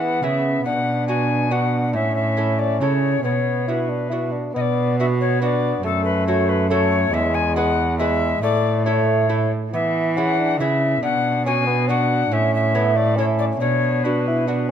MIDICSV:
0, 0, Header, 1, 5, 480
1, 0, Start_track
1, 0, Tempo, 431965
1, 725, Time_signature, 3, 2, 24, 8
1, 16346, End_track
2, 0, Start_track
2, 0, Title_t, "Recorder"
2, 0, Program_c, 0, 74
2, 0, Note_on_c, 0, 78, 74
2, 257, Note_on_c, 0, 76, 76
2, 273, Note_off_c, 0, 78, 0
2, 705, Note_off_c, 0, 76, 0
2, 712, Note_on_c, 0, 78, 87
2, 1186, Note_off_c, 0, 78, 0
2, 1195, Note_on_c, 0, 80, 90
2, 1683, Note_on_c, 0, 78, 88
2, 1700, Note_off_c, 0, 80, 0
2, 2150, Note_off_c, 0, 78, 0
2, 2156, Note_on_c, 0, 76, 90
2, 2385, Note_off_c, 0, 76, 0
2, 2391, Note_on_c, 0, 76, 79
2, 2874, Note_on_c, 0, 74, 73
2, 2891, Note_off_c, 0, 76, 0
2, 3114, Note_off_c, 0, 74, 0
2, 3120, Note_on_c, 0, 73, 68
2, 3588, Note_off_c, 0, 73, 0
2, 3595, Note_on_c, 0, 73, 71
2, 4106, Note_on_c, 0, 71, 52
2, 4122, Note_off_c, 0, 73, 0
2, 4826, Note_off_c, 0, 71, 0
2, 5062, Note_on_c, 0, 75, 82
2, 5117, Note_on_c, 0, 74, 89
2, 5129, Note_off_c, 0, 75, 0
2, 5507, Note_off_c, 0, 74, 0
2, 5547, Note_on_c, 0, 76, 86
2, 5614, Note_off_c, 0, 76, 0
2, 5778, Note_on_c, 0, 73, 80
2, 6012, Note_off_c, 0, 73, 0
2, 6027, Note_on_c, 0, 74, 86
2, 6484, Note_off_c, 0, 74, 0
2, 6491, Note_on_c, 0, 69, 93
2, 6708, Note_off_c, 0, 69, 0
2, 6715, Note_on_c, 0, 71, 77
2, 6957, Note_off_c, 0, 71, 0
2, 6963, Note_on_c, 0, 73, 84
2, 7206, Note_on_c, 0, 71, 84
2, 7223, Note_off_c, 0, 73, 0
2, 7433, Note_off_c, 0, 71, 0
2, 7439, Note_on_c, 0, 73, 98
2, 7924, Note_on_c, 0, 76, 114
2, 7941, Note_off_c, 0, 73, 0
2, 8158, Note_on_c, 0, 80, 108
2, 8174, Note_off_c, 0, 76, 0
2, 8388, Note_off_c, 0, 80, 0
2, 8394, Note_on_c, 0, 78, 102
2, 8858, Note_off_c, 0, 78, 0
2, 8864, Note_on_c, 0, 76, 99
2, 9345, Note_off_c, 0, 76, 0
2, 9362, Note_on_c, 0, 74, 103
2, 9839, Note_on_c, 0, 73, 78
2, 9856, Note_off_c, 0, 74, 0
2, 10566, Note_off_c, 0, 73, 0
2, 10820, Note_on_c, 0, 76, 93
2, 11290, Note_on_c, 0, 78, 88
2, 11307, Note_off_c, 0, 76, 0
2, 11764, Note_off_c, 0, 78, 0
2, 11770, Note_on_c, 0, 76, 91
2, 12240, Note_off_c, 0, 76, 0
2, 12258, Note_on_c, 0, 78, 95
2, 12722, Note_off_c, 0, 78, 0
2, 12732, Note_on_c, 0, 80, 94
2, 13198, Note_off_c, 0, 80, 0
2, 13203, Note_on_c, 0, 78, 101
2, 13697, Note_on_c, 0, 76, 106
2, 13714, Note_off_c, 0, 78, 0
2, 13927, Note_off_c, 0, 76, 0
2, 13937, Note_on_c, 0, 76, 91
2, 14406, Note_on_c, 0, 74, 82
2, 14423, Note_off_c, 0, 76, 0
2, 14640, Note_off_c, 0, 74, 0
2, 14652, Note_on_c, 0, 73, 93
2, 14719, Note_off_c, 0, 73, 0
2, 14873, Note_on_c, 0, 74, 91
2, 14939, Note_off_c, 0, 74, 0
2, 15109, Note_on_c, 0, 73, 91
2, 15596, Note_on_c, 0, 71, 68
2, 15613, Note_off_c, 0, 73, 0
2, 16328, Note_off_c, 0, 71, 0
2, 16346, End_track
3, 0, Start_track
3, 0, Title_t, "Lute"
3, 0, Program_c, 1, 24
3, 0, Note_on_c, 1, 52, 41
3, 0, Note_on_c, 1, 59, 42
3, 0, Note_on_c, 1, 64, 43
3, 0, Note_on_c, 1, 68, 41
3, 202, Note_off_c, 1, 52, 0
3, 211, Note_off_c, 1, 59, 0
3, 211, Note_off_c, 1, 64, 0
3, 214, Note_off_c, 1, 68, 0
3, 253, Note_on_c, 1, 49, 48
3, 261, Note_on_c, 1, 64, 42
3, 262, Note_on_c, 1, 59, 45
3, 262, Note_on_c, 1, 68, 50
3, 684, Note_off_c, 1, 49, 0
3, 686, Note_off_c, 1, 59, 0
3, 687, Note_off_c, 1, 68, 0
3, 688, Note_off_c, 1, 64, 0
3, 730, Note_on_c, 1, 47, 47
3, 1202, Note_on_c, 1, 59, 46
3, 1206, Note_on_c, 1, 62, 44
3, 1212, Note_on_c, 1, 66, 53
3, 1633, Note_off_c, 1, 59, 0
3, 1635, Note_off_c, 1, 62, 0
3, 1638, Note_off_c, 1, 66, 0
3, 1678, Note_on_c, 1, 59, 50
3, 1680, Note_on_c, 1, 62, 51
3, 1683, Note_on_c, 1, 66, 53
3, 2107, Note_off_c, 1, 62, 0
3, 2109, Note_off_c, 1, 59, 0
3, 2110, Note_off_c, 1, 47, 0
3, 2111, Note_off_c, 1, 66, 0
3, 2147, Note_on_c, 1, 45, 52
3, 2633, Note_on_c, 1, 61, 45
3, 2639, Note_on_c, 1, 64, 46
3, 2646, Note_on_c, 1, 69, 50
3, 3066, Note_off_c, 1, 45, 0
3, 3070, Note_off_c, 1, 61, 0
3, 3073, Note_off_c, 1, 64, 0
3, 3076, Note_off_c, 1, 69, 0
3, 3121, Note_on_c, 1, 61, 42
3, 3127, Note_on_c, 1, 49, 49
3, 3129, Note_on_c, 1, 64, 41
3, 3135, Note_on_c, 1, 69, 45
3, 3560, Note_off_c, 1, 61, 0
3, 3562, Note_off_c, 1, 64, 0
3, 3563, Note_off_c, 1, 49, 0
3, 3567, Note_off_c, 1, 69, 0
3, 3606, Note_on_c, 1, 47, 42
3, 4092, Note_on_c, 1, 59, 36
3, 4097, Note_on_c, 1, 62, 38
3, 4105, Note_on_c, 1, 66, 38
3, 4532, Note_off_c, 1, 59, 0
3, 4533, Note_off_c, 1, 62, 0
3, 4538, Note_off_c, 1, 66, 0
3, 4573, Note_on_c, 1, 59, 38
3, 4579, Note_on_c, 1, 62, 40
3, 4584, Note_on_c, 1, 66, 41
3, 4793, Note_off_c, 1, 47, 0
3, 5013, Note_off_c, 1, 59, 0
3, 5017, Note_off_c, 1, 62, 0
3, 5018, Note_off_c, 1, 66, 0
3, 5069, Note_on_c, 1, 47, 52
3, 5551, Note_on_c, 1, 59, 44
3, 5555, Note_on_c, 1, 62, 43
3, 5561, Note_on_c, 1, 66, 49
3, 5979, Note_off_c, 1, 59, 0
3, 5980, Note_off_c, 1, 62, 0
3, 5983, Note_off_c, 1, 66, 0
3, 6019, Note_on_c, 1, 59, 50
3, 6025, Note_on_c, 1, 62, 50
3, 6028, Note_on_c, 1, 66, 50
3, 6452, Note_off_c, 1, 59, 0
3, 6453, Note_off_c, 1, 62, 0
3, 6455, Note_off_c, 1, 47, 0
3, 6455, Note_off_c, 1, 66, 0
3, 6481, Note_on_c, 1, 42, 56
3, 6975, Note_on_c, 1, 57, 48
3, 6980, Note_on_c, 1, 66, 53
3, 6984, Note_on_c, 1, 69, 56
3, 7406, Note_off_c, 1, 57, 0
3, 7409, Note_off_c, 1, 66, 0
3, 7409, Note_off_c, 1, 69, 0
3, 7450, Note_on_c, 1, 57, 54
3, 7456, Note_on_c, 1, 66, 55
3, 7459, Note_on_c, 1, 69, 59
3, 7875, Note_off_c, 1, 42, 0
3, 7883, Note_off_c, 1, 57, 0
3, 7885, Note_off_c, 1, 66, 0
3, 7887, Note_off_c, 1, 69, 0
3, 7934, Note_on_c, 1, 40, 59
3, 8402, Note_on_c, 1, 56, 52
3, 8409, Note_on_c, 1, 68, 58
3, 8414, Note_on_c, 1, 71, 58
3, 8838, Note_off_c, 1, 56, 0
3, 8839, Note_off_c, 1, 68, 0
3, 8843, Note_off_c, 1, 71, 0
3, 8883, Note_on_c, 1, 56, 57
3, 8889, Note_on_c, 1, 68, 56
3, 8896, Note_on_c, 1, 71, 59
3, 9320, Note_off_c, 1, 56, 0
3, 9322, Note_off_c, 1, 68, 0
3, 9323, Note_off_c, 1, 40, 0
3, 9326, Note_off_c, 1, 71, 0
3, 9368, Note_on_c, 1, 45, 55
3, 9844, Note_on_c, 1, 57, 44
3, 9848, Note_on_c, 1, 64, 51
3, 9858, Note_on_c, 1, 69, 48
3, 10283, Note_off_c, 1, 57, 0
3, 10283, Note_off_c, 1, 64, 0
3, 10290, Note_off_c, 1, 69, 0
3, 10326, Note_on_c, 1, 57, 48
3, 10328, Note_on_c, 1, 64, 45
3, 10330, Note_on_c, 1, 69, 50
3, 10545, Note_off_c, 1, 45, 0
3, 10764, Note_off_c, 1, 64, 0
3, 10765, Note_off_c, 1, 57, 0
3, 10767, Note_off_c, 1, 69, 0
3, 10818, Note_on_c, 1, 52, 51
3, 11302, Note_on_c, 1, 59, 46
3, 11310, Note_on_c, 1, 64, 48
3, 11312, Note_on_c, 1, 68, 55
3, 11730, Note_off_c, 1, 52, 0
3, 11734, Note_off_c, 1, 59, 0
3, 11734, Note_off_c, 1, 68, 0
3, 11735, Note_off_c, 1, 64, 0
3, 11783, Note_on_c, 1, 49, 57
3, 11786, Note_on_c, 1, 59, 50
3, 11788, Note_on_c, 1, 64, 47
3, 11794, Note_on_c, 1, 68, 56
3, 12210, Note_off_c, 1, 59, 0
3, 12212, Note_off_c, 1, 49, 0
3, 12214, Note_off_c, 1, 64, 0
3, 12215, Note_off_c, 1, 68, 0
3, 12254, Note_on_c, 1, 47, 55
3, 12738, Note_on_c, 1, 59, 52
3, 12745, Note_on_c, 1, 62, 50
3, 12751, Note_on_c, 1, 66, 57
3, 13166, Note_off_c, 1, 59, 0
3, 13170, Note_off_c, 1, 62, 0
3, 13171, Note_off_c, 1, 66, 0
3, 13214, Note_on_c, 1, 59, 51
3, 13220, Note_on_c, 1, 62, 52
3, 13226, Note_on_c, 1, 66, 59
3, 13638, Note_off_c, 1, 47, 0
3, 13640, Note_off_c, 1, 59, 0
3, 13644, Note_off_c, 1, 62, 0
3, 13645, Note_off_c, 1, 66, 0
3, 13685, Note_on_c, 1, 45, 58
3, 14165, Note_on_c, 1, 61, 57
3, 14168, Note_on_c, 1, 64, 51
3, 14174, Note_on_c, 1, 69, 60
3, 14595, Note_off_c, 1, 61, 0
3, 14595, Note_off_c, 1, 64, 0
3, 14597, Note_off_c, 1, 69, 0
3, 14648, Note_on_c, 1, 61, 51
3, 14653, Note_on_c, 1, 64, 51
3, 14653, Note_on_c, 1, 69, 58
3, 15075, Note_off_c, 1, 45, 0
3, 15079, Note_off_c, 1, 61, 0
3, 15081, Note_off_c, 1, 64, 0
3, 15082, Note_off_c, 1, 69, 0
3, 15128, Note_on_c, 1, 47, 52
3, 15610, Note_on_c, 1, 59, 47
3, 15617, Note_on_c, 1, 62, 46
3, 15621, Note_on_c, 1, 66, 49
3, 16048, Note_off_c, 1, 59, 0
3, 16051, Note_off_c, 1, 62, 0
3, 16054, Note_off_c, 1, 66, 0
3, 16084, Note_on_c, 1, 59, 43
3, 16092, Note_on_c, 1, 62, 45
3, 16096, Note_on_c, 1, 66, 51
3, 16310, Note_off_c, 1, 47, 0
3, 16346, Note_off_c, 1, 59, 0
3, 16346, Note_off_c, 1, 62, 0
3, 16346, Note_off_c, 1, 66, 0
3, 16346, End_track
4, 0, Start_track
4, 0, Title_t, "Bassoon"
4, 0, Program_c, 2, 70
4, 11, Note_on_c, 2, 59, 57
4, 726, Note_off_c, 2, 59, 0
4, 737, Note_on_c, 2, 62, 59
4, 1664, Note_off_c, 2, 62, 0
4, 1674, Note_on_c, 2, 62, 52
4, 2170, Note_on_c, 2, 61, 62
4, 2187, Note_off_c, 2, 62, 0
4, 3603, Note_on_c, 2, 59, 47
4, 3620, Note_off_c, 2, 61, 0
4, 4040, Note_off_c, 2, 59, 0
4, 4086, Note_on_c, 2, 64, 57
4, 4325, Note_on_c, 2, 62, 49
4, 4342, Note_off_c, 2, 64, 0
4, 4547, Note_off_c, 2, 62, 0
4, 4554, Note_on_c, 2, 64, 51
4, 4797, Note_on_c, 2, 62, 50
4, 4813, Note_off_c, 2, 64, 0
4, 5040, Note_off_c, 2, 62, 0
4, 5047, Note_on_c, 2, 59, 67
4, 5967, Note_off_c, 2, 59, 0
4, 6006, Note_on_c, 2, 59, 53
4, 6479, Note_off_c, 2, 59, 0
4, 6490, Note_on_c, 2, 57, 67
4, 7427, Note_off_c, 2, 57, 0
4, 7442, Note_on_c, 2, 57, 64
4, 7918, Note_on_c, 2, 56, 73
4, 7935, Note_off_c, 2, 57, 0
4, 8702, Note_off_c, 2, 56, 0
4, 8891, Note_on_c, 2, 56, 65
4, 9358, Note_off_c, 2, 56, 0
4, 9368, Note_on_c, 2, 57, 66
4, 9829, Note_off_c, 2, 57, 0
4, 9835, Note_on_c, 2, 57, 55
4, 10550, Note_off_c, 2, 57, 0
4, 10813, Note_on_c, 2, 59, 58
4, 11299, Note_on_c, 2, 61, 60
4, 11316, Note_off_c, 2, 59, 0
4, 11540, Note_on_c, 2, 62, 71
4, 11557, Note_off_c, 2, 61, 0
4, 11774, Note_on_c, 2, 64, 58
4, 11790, Note_off_c, 2, 62, 0
4, 12243, Note_off_c, 2, 64, 0
4, 12250, Note_on_c, 2, 62, 64
4, 12724, Note_on_c, 2, 61, 71
4, 12741, Note_off_c, 2, 62, 0
4, 12959, Note_off_c, 2, 61, 0
4, 12966, Note_on_c, 2, 59, 69
4, 13206, Note_on_c, 2, 62, 60
4, 13222, Note_off_c, 2, 59, 0
4, 13693, Note_on_c, 2, 61, 69
4, 13710, Note_off_c, 2, 62, 0
4, 14168, Note_on_c, 2, 59, 68
4, 14185, Note_off_c, 2, 61, 0
4, 14391, Note_on_c, 2, 57, 80
4, 14407, Note_off_c, 2, 59, 0
4, 14621, Note_on_c, 2, 61, 63
4, 14638, Note_off_c, 2, 57, 0
4, 15111, Note_on_c, 2, 62, 58
4, 15128, Note_off_c, 2, 61, 0
4, 15551, Note_off_c, 2, 62, 0
4, 15606, Note_on_c, 2, 62, 64
4, 15830, Note_off_c, 2, 62, 0
4, 15864, Note_on_c, 2, 64, 70
4, 16076, Note_off_c, 2, 64, 0
4, 16083, Note_on_c, 2, 62, 61
4, 16315, Note_off_c, 2, 62, 0
4, 16346, End_track
5, 0, Start_track
5, 0, Title_t, "Cello"
5, 0, Program_c, 3, 42
5, 0, Note_on_c, 3, 52, 50
5, 235, Note_on_c, 3, 49, 51
5, 251, Note_off_c, 3, 52, 0
5, 708, Note_off_c, 3, 49, 0
5, 715, Note_on_c, 3, 47, 66
5, 2150, Note_on_c, 3, 45, 65
5, 2166, Note_off_c, 3, 47, 0
5, 3112, Note_on_c, 3, 49, 57
5, 3129, Note_off_c, 3, 45, 0
5, 3596, Note_off_c, 3, 49, 0
5, 3603, Note_on_c, 3, 47, 52
5, 4811, Note_off_c, 3, 47, 0
5, 5057, Note_on_c, 3, 47, 65
5, 6449, Note_off_c, 3, 47, 0
5, 6482, Note_on_c, 3, 42, 68
5, 7891, Note_off_c, 3, 42, 0
5, 7909, Note_on_c, 3, 40, 70
5, 9326, Note_off_c, 3, 40, 0
5, 9353, Note_on_c, 3, 45, 69
5, 10557, Note_off_c, 3, 45, 0
5, 10799, Note_on_c, 3, 52, 62
5, 11771, Note_on_c, 3, 49, 62
5, 11787, Note_off_c, 3, 52, 0
5, 12241, Note_off_c, 3, 49, 0
5, 12248, Note_on_c, 3, 47, 74
5, 13651, Note_off_c, 3, 47, 0
5, 13674, Note_on_c, 3, 45, 73
5, 15085, Note_off_c, 3, 45, 0
5, 15108, Note_on_c, 3, 47, 67
5, 16320, Note_off_c, 3, 47, 0
5, 16346, End_track
0, 0, End_of_file